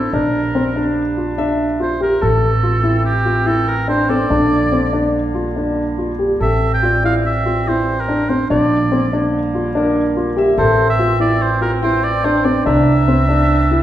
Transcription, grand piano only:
0.14 0.39 D4 medium
0.55 0.68 C4 medium
0.76 1.01 D4 medium
1.17 1.30 F4 medium
1.38 1.64 D4 medium
1.80 1.93 F4 medium
2.01 2.13 G4 medium
2.21 2.47 A4 medium
2.63 2.76 F4 medium
2.84 3.09 E4 medium
3.25 3.38 F4 medium
3.46 3.72 E4 medium
3.88 4.01 D4 medium
4.09 4.22 C4 medium
4.30 4.56 D4 medium
4.72 4.85 C4 medium
4.93 5.19 D4 medium
5.35 5.48 F4 medium
5.56 5.82 D4 medium
5.98 6.11 F4 medium
6.19 6.32 G4 medium
6.40 6.66 A4 medium
6.83 6.96 F4 medium
7.04 7.30 E4 medium
7.46 7.59 F4 medium
7.68 7.93 E4 medium
8.08 8.21 D4 medium
8.29 8.42 C4 medium
8.50 8.76 D4 medium
8.92 9.04 C4 medium
9.13 9.38 D4 medium
9.55 9.67 F4 medium
9.75 10.00 D4 medium
10.17 10.29 F4 medium
10.37 10.49 G4 medium
10.58 10.83 A4 medium
10.99 11.12 F4 medium
11.20 11.45 E4 medium
11.61 11.74 F4 medium
11.83 12.08 E4 medium
12.24 12.37 D4 medium
12.45 12.57 C4 medium
12.66 12.91 D4 medium
13.08 13.21 C4 medium
13.29 13.54 D4 medium
13.71 13.83 E4 medium

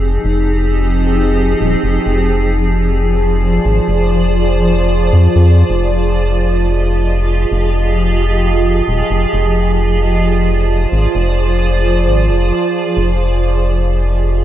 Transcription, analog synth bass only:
0.00 0.18 F1 medium
0.24 1.54 F1 medium
1.61 1.75 D#1 medium
1.83 1.98 F1 medium
2.06 3.59 F1 medium
3.65 3.80 G#1 loud
3.88 5.12 F1 loud
5.13 5.28 F2 medium
5.36 5.63 F2 loud
5.70 7.45 F1 loud
7.52 8.82 F1 loud
8.88 9.03 D#1 medium
9.11 9.25 F1 medium
9.33 10.86 F1 medium
10.92 11.07 G#1 loud
11.15 12.08 F1 medium
12.06 12.30 G#1 medium
12.29 12.51 F1 medium
12.97 14.44 F1 medium

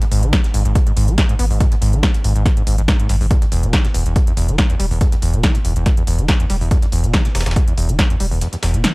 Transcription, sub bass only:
0.12 0.22 G#1 medium
0.23 0.33 G#1 medium
0.54 0.65 G#1 medium
0.65 0.75 G#1 medium
0.97 1.07 G#1 loud
1.08 1.18 G#1 medium
1.39 1.50 G#1 loud
1.50 1.60 G#1 medium
1.82 1.92 G#1 loud
1.93 2.03 G#1 medium
2.24 2.35 G#1 medium
2.36 2.45 G#1 medium
2.67 2.78 G#1 loud
2.78 2.88 G#1 medium
3.09 3.20 G#1 loud
3.21 3.31 G#1 medium
3.52 3.63 E1 loud
3.63 3.73 E1 medium
3.94 4.05 E1 loud
4.06 4.16 E1 medium
4.37 4.48 E1 loud
4.48 4.58 E1 medium
4.80 4.90 E1 loud
4.91 5.01 E1 medium
5.22 5.33 E1 medium
5.34 5.43 E1 medium
5.65 5.75 E1 medium
5.76 5.86 E1 medium
6.07 6.18 E1 loud
6.19 6.28 E1 medium
6.50 6.61 E1 loud
6.61 6.71 E1 medium
6.93 7.03 E1 loud
7.04 7.14 E1 medium
7.35 7.46 E1 medium
7.46 7.56 E1 medium
7.78 7.88 E1 loud
7.89 7.99 E1 medium
8.20 8.31 E1 loud
8.31 8.41 E1 medium
8.63 8.73 E1 medium
8.74 8.84 E1 medium

